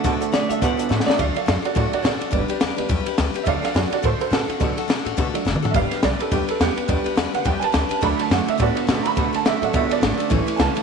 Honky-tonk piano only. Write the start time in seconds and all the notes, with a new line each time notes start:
0.05 D5 F#5 A5
0.21 D5 F#5 A5
0.33 D5 F#5
0.50 D5 F#5 A5
0.61 D5 F#5 A5
0.78 D5 F#5 A5
0.90 D5 F#5 A5
1.07 D5 F#5 A5
1.16 F#3 A3 D4 E5
1.20 D5 F5
1.37 D5 F5
1.49 D5 F5
1.65 F#4 D5
1.76 F#3 A3 D4 F#4 D5
1.94 F#4 D5
2.02 C#5
2.06 D5
2.33 G3 B3 D4
2.78 G3 B3 D4
3.44 F#3 A3 D4 E5
3.48 D5 F5
3.64 D5 F5
3.76 F#4 D5
3.93 F#4 D5
4.05 A4 C5
4.21 A4 C5
4.34 A4
4.60 F#3 A3 D4
5.34 F#3 A3 D4
5.71 G3 B3 D4 E5
5.76 F5
6.05 D5
6.21 A4
6.31 G3 B3 D4 G4
6.50 A4
6.61 B3 G4
6.88 G3 B3 D4
7.35 F#5
7.46 G5
7.60 G#5
7.64 A5
8.02 F#3 A3 D4 B5
8.21 A5
8.33 F#5
8.50 E5
8.62 F#4 D5
9.03 A#5
9.07 B5
9.35 A5
9.47 E5
9.62 F#3 A3 D4 F#5
9.76 E5
9.92 D5
10.30 E3 A3 C#4
10.56 G#5
10.61 A5